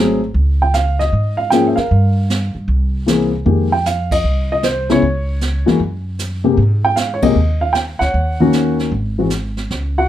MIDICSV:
0, 0, Header, 1, 5, 480
1, 0, Start_track
1, 0, Key_signature, -4, "major"
1, 0, Tempo, 389610
1, 425, Time_signature, 4, 2, 24, 8
1, 12425, End_track
2, 0, Start_track
2, 0, Title_t, "Grand piano"
2, 0, Program_c, 0, 0
2, 0, Note_on_c, 0, 54, 59
2, 0, Note_on_c, 0, 57, 56
2, 0, Note_on_c, 0, 60, 57
2, 0, Note_on_c, 0, 68, 67
2, 233, Note_off_c, 0, 54, 0
2, 237, Note_off_c, 0, 57, 0
2, 239, Note_off_c, 0, 60, 0
2, 239, Note_off_c, 0, 68, 0
2, 763, Note_on_c, 0, 79, 81
2, 911, Note_on_c, 0, 77, 88
2, 919, Note_off_c, 0, 79, 0
2, 1204, Note_off_c, 0, 77, 0
2, 1225, Note_on_c, 0, 75, 84
2, 1691, Note_on_c, 0, 77, 81
2, 1718, Note_off_c, 0, 75, 0
2, 1853, Note_on_c, 0, 79, 89
2, 1863, Note_off_c, 0, 77, 0
2, 1874, Note_on_c, 0, 53, 59
2, 1878, Note_on_c, 0, 58, 51
2, 1879, Note_on_c, 0, 61, 57
2, 1887, Note_on_c, 0, 68, 61
2, 2048, Note_off_c, 0, 79, 0
2, 2058, Note_on_c, 0, 76, 54
2, 2156, Note_off_c, 0, 53, 0
2, 2158, Note_off_c, 0, 58, 0
2, 2159, Note_off_c, 0, 61, 0
2, 2162, Note_off_c, 0, 68, 0
2, 2164, Note_on_c, 0, 77, 81
2, 2178, Note_off_c, 0, 76, 0
2, 2188, Note_on_c, 0, 70, 55
2, 3084, Note_off_c, 0, 77, 0
2, 3096, Note_off_c, 0, 70, 0
2, 3775, Note_on_c, 0, 52, 58
2, 3787, Note_on_c, 0, 58, 55
2, 3791, Note_on_c, 0, 60, 50
2, 3793, Note_on_c, 0, 68, 62
2, 4066, Note_off_c, 0, 52, 0
2, 4073, Note_off_c, 0, 58, 0
2, 4075, Note_off_c, 0, 60, 0
2, 4075, Note_off_c, 0, 68, 0
2, 4255, Note_on_c, 0, 51, 51
2, 4258, Note_on_c, 0, 58, 47
2, 4263, Note_on_c, 0, 56, 51
2, 4263, Note_on_c, 0, 67, 56
2, 4546, Note_off_c, 0, 51, 0
2, 4548, Note_off_c, 0, 58, 0
2, 4550, Note_off_c, 0, 56, 0
2, 4551, Note_off_c, 0, 67, 0
2, 4588, Note_on_c, 0, 79, 79
2, 4735, Note_off_c, 0, 79, 0
2, 4759, Note_on_c, 0, 77, 84
2, 5077, Note_on_c, 0, 75, 81
2, 5080, Note_off_c, 0, 77, 0
2, 5551, Note_off_c, 0, 75, 0
2, 5570, Note_on_c, 0, 75, 84
2, 5707, Note_off_c, 0, 75, 0
2, 5717, Note_on_c, 0, 72, 76
2, 6007, Note_off_c, 0, 72, 0
2, 6029, Note_on_c, 0, 49, 60
2, 6033, Note_on_c, 0, 56, 59
2, 6035, Note_on_c, 0, 59, 58
2, 6038, Note_on_c, 0, 64, 72
2, 6059, Note_on_c, 0, 73, 90
2, 6171, Note_off_c, 0, 49, 0
2, 6173, Note_off_c, 0, 56, 0
2, 6174, Note_off_c, 0, 59, 0
2, 6175, Note_off_c, 0, 64, 0
2, 6952, Note_off_c, 0, 73, 0
2, 6974, Note_on_c, 0, 52, 63
2, 6979, Note_on_c, 0, 56, 59
2, 6981, Note_on_c, 0, 58, 56
2, 6984, Note_on_c, 0, 66, 68
2, 7123, Note_off_c, 0, 52, 0
2, 7126, Note_off_c, 0, 56, 0
2, 7127, Note_off_c, 0, 58, 0
2, 7128, Note_off_c, 0, 66, 0
2, 7935, Note_on_c, 0, 48, 65
2, 7938, Note_on_c, 0, 56, 56
2, 7939, Note_on_c, 0, 58, 56
2, 7948, Note_on_c, 0, 67, 66
2, 8084, Note_off_c, 0, 48, 0
2, 8085, Note_off_c, 0, 56, 0
2, 8086, Note_off_c, 0, 58, 0
2, 8090, Note_off_c, 0, 67, 0
2, 8434, Note_on_c, 0, 79, 89
2, 8575, Note_on_c, 0, 77, 83
2, 8578, Note_off_c, 0, 79, 0
2, 8769, Note_off_c, 0, 77, 0
2, 8794, Note_on_c, 0, 73, 70
2, 8899, Note_on_c, 0, 48, 66
2, 8906, Note_off_c, 0, 73, 0
2, 8907, Note_on_c, 0, 56, 61
2, 8907, Note_on_c, 0, 58, 64
2, 8907, Note_on_c, 0, 67, 69
2, 8907, Note_on_c, 0, 75, 84
2, 9046, Note_off_c, 0, 48, 0
2, 9050, Note_off_c, 0, 56, 0
2, 9050, Note_off_c, 0, 58, 0
2, 9050, Note_off_c, 0, 67, 0
2, 9351, Note_off_c, 0, 75, 0
2, 9378, Note_on_c, 0, 77, 84
2, 9521, Note_on_c, 0, 79, 91
2, 9530, Note_off_c, 0, 77, 0
2, 9595, Note_off_c, 0, 79, 0
2, 9846, Note_on_c, 0, 78, 84
2, 9885, Note_on_c, 0, 73, 60
2, 10351, Note_on_c, 0, 51, 70
2, 10353, Note_on_c, 0, 58, 65
2, 10358, Note_on_c, 0, 61, 61
2, 10363, Note_on_c, 0, 66, 74
2, 10764, Note_off_c, 0, 78, 0
2, 10784, Note_off_c, 0, 73, 0
2, 10955, Note_off_c, 0, 51, 0
2, 10957, Note_off_c, 0, 58, 0
2, 10959, Note_off_c, 0, 61, 0
2, 10961, Note_off_c, 0, 66, 0
2, 11314, Note_on_c, 0, 52, 52
2, 11318, Note_on_c, 0, 56, 46
2, 11319, Note_on_c, 0, 60, 47
2, 11327, Note_on_c, 0, 66, 58
2, 11453, Note_off_c, 0, 52, 0
2, 11455, Note_off_c, 0, 56, 0
2, 11455, Note_off_c, 0, 60, 0
2, 11459, Note_off_c, 0, 66, 0
2, 12294, Note_on_c, 0, 66, 64
2, 12297, Note_on_c, 0, 78, 81
2, 12425, Note_off_c, 0, 66, 0
2, 12425, Note_off_c, 0, 78, 0
2, 12425, End_track
3, 0, Start_track
3, 0, Title_t, "Upright bass"
3, 0, Program_c, 1, 32
3, 0, Note_on_c, 1, 32, 78
3, 368, Note_off_c, 1, 32, 0
3, 424, Note_on_c, 1, 37, 81
3, 1336, Note_off_c, 1, 37, 0
3, 1388, Note_on_c, 1, 44, 78
3, 2136, Note_off_c, 1, 44, 0
3, 2355, Note_on_c, 1, 43, 78
3, 3099, Note_off_c, 1, 43, 0
3, 3141, Note_on_c, 1, 43, 58
3, 3292, Note_off_c, 1, 43, 0
3, 3300, Note_on_c, 1, 36, 81
3, 4214, Note_off_c, 1, 36, 0
3, 4260, Note_on_c, 1, 41, 85
3, 5174, Note_off_c, 1, 41, 0
3, 5222, Note_on_c, 1, 36, 76
3, 6135, Note_off_c, 1, 36, 0
3, 6188, Note_on_c, 1, 37, 82
3, 6935, Note_off_c, 1, 37, 0
3, 6987, Note_on_c, 1, 40, 64
3, 7135, Note_off_c, 1, 40, 0
3, 7145, Note_on_c, 1, 42, 78
3, 8056, Note_off_c, 1, 42, 0
3, 8101, Note_on_c, 1, 44, 86
3, 9014, Note_off_c, 1, 44, 0
3, 9061, Note_on_c, 1, 39, 82
3, 9812, Note_off_c, 1, 39, 0
3, 9868, Note_on_c, 1, 38, 63
3, 10015, Note_off_c, 1, 38, 0
3, 10029, Note_on_c, 1, 39, 85
3, 10938, Note_off_c, 1, 39, 0
3, 10984, Note_on_c, 1, 32, 84
3, 11895, Note_off_c, 1, 32, 0
3, 11959, Note_on_c, 1, 37, 85
3, 12416, Note_off_c, 1, 37, 0
3, 12425, End_track
4, 0, Start_track
4, 0, Title_t, "Muted upright bass strokes"
4, 2189, Note_on_c, 9, 29, 36
4, 2312, Note_off_c, 9, 29, 0
4, 12425, End_track
5, 0, Start_track
5, 0, Title_t, "Drums"
5, 431, Note_on_c, 9, 25, 42
5, 909, Note_on_c, 9, 44, 52
5, 911, Note_on_c, 9, 38, 53
5, 1032, Note_off_c, 9, 44, 0
5, 1035, Note_off_c, 9, 38, 0
5, 1233, Note_on_c, 9, 38, 34
5, 1356, Note_off_c, 9, 38, 0
5, 1389, Note_off_c, 9, 25, 0
5, 1389, Note_on_c, 9, 25, 45
5, 1864, Note_on_c, 9, 44, 57
5, 1867, Note_on_c, 9, 38, 54
5, 1987, Note_off_c, 9, 44, 0
5, 1990, Note_off_c, 9, 38, 0
5, 2181, Note_on_c, 9, 38, 36
5, 2304, Note_off_c, 9, 38, 0
5, 2352, Note_off_c, 9, 25, 0
5, 2352, Note_on_c, 9, 25, 41
5, 2831, Note_on_c, 9, 44, 54
5, 2834, Note_on_c, 9, 38, 51
5, 2954, Note_off_c, 9, 44, 0
5, 2957, Note_off_c, 9, 38, 0
5, 3312, Note_off_c, 9, 25, 0
5, 3312, Note_on_c, 9, 25, 47
5, 3790, Note_on_c, 9, 44, 53
5, 3793, Note_on_c, 9, 38, 53
5, 3913, Note_off_c, 9, 44, 0
5, 3916, Note_off_c, 9, 38, 0
5, 4270, Note_off_c, 9, 25, 0
5, 4270, Note_on_c, 9, 25, 47
5, 4750, Note_on_c, 9, 44, 51
5, 4753, Note_on_c, 9, 38, 55
5, 4874, Note_off_c, 9, 44, 0
5, 4876, Note_off_c, 9, 38, 0
5, 5068, Note_on_c, 9, 36, 70
5, 5072, Note_on_c, 9, 51, 69
5, 5191, Note_off_c, 9, 36, 0
5, 5195, Note_off_c, 9, 51, 0
5, 5233, Note_off_c, 9, 25, 0
5, 5233, Note_on_c, 9, 25, 48
5, 5702, Note_on_c, 9, 44, 56
5, 5705, Note_on_c, 9, 38, 55
5, 5825, Note_off_c, 9, 44, 0
5, 5828, Note_off_c, 9, 38, 0
5, 6031, Note_on_c, 9, 38, 33
5, 6154, Note_off_c, 9, 38, 0
5, 6193, Note_off_c, 9, 25, 0
5, 6193, Note_on_c, 9, 25, 40
5, 6667, Note_on_c, 9, 44, 46
5, 6670, Note_on_c, 9, 38, 52
5, 6791, Note_off_c, 9, 44, 0
5, 6793, Note_off_c, 9, 38, 0
5, 6992, Note_on_c, 9, 38, 35
5, 7116, Note_off_c, 9, 38, 0
5, 7150, Note_off_c, 9, 25, 0
5, 7150, Note_on_c, 9, 25, 48
5, 7624, Note_on_c, 9, 44, 54
5, 7627, Note_on_c, 9, 38, 53
5, 7748, Note_off_c, 9, 44, 0
5, 7750, Note_off_c, 9, 38, 0
5, 8109, Note_off_c, 9, 25, 0
5, 8109, Note_on_c, 9, 25, 48
5, 8582, Note_on_c, 9, 44, 59
5, 8584, Note_on_c, 9, 38, 53
5, 8705, Note_off_c, 9, 44, 0
5, 8708, Note_off_c, 9, 38, 0
5, 8898, Note_on_c, 9, 51, 63
5, 8904, Note_on_c, 9, 36, 75
5, 9021, Note_off_c, 9, 51, 0
5, 9028, Note_off_c, 9, 36, 0
5, 9062, Note_off_c, 9, 25, 0
5, 9062, Note_on_c, 9, 25, 45
5, 9543, Note_on_c, 9, 44, 57
5, 9546, Note_on_c, 9, 38, 53
5, 9667, Note_off_c, 9, 44, 0
5, 9669, Note_off_c, 9, 38, 0
5, 9867, Note_on_c, 9, 38, 36
5, 9990, Note_off_c, 9, 38, 0
5, 10026, Note_off_c, 9, 25, 0
5, 10026, Note_on_c, 9, 25, 45
5, 10505, Note_on_c, 9, 44, 49
5, 10508, Note_on_c, 9, 38, 55
5, 10629, Note_off_c, 9, 44, 0
5, 10631, Note_off_c, 9, 38, 0
5, 10833, Note_on_c, 9, 38, 35
5, 10956, Note_off_c, 9, 38, 0
5, 10990, Note_off_c, 9, 25, 0
5, 10990, Note_on_c, 9, 25, 45
5, 11458, Note_on_c, 9, 44, 50
5, 11461, Note_on_c, 9, 38, 51
5, 11582, Note_off_c, 9, 44, 0
5, 11584, Note_off_c, 9, 38, 0
5, 11790, Note_on_c, 9, 38, 36
5, 11913, Note_off_c, 9, 38, 0
5, 11956, Note_off_c, 9, 25, 0
5, 11956, Note_on_c, 9, 25, 45
5, 11956, Note_on_c, 9, 38, 45
5, 12079, Note_off_c, 9, 38, 0
5, 12425, Note_off_c, 9, 25, 0
5, 12425, End_track
0, 0, End_of_file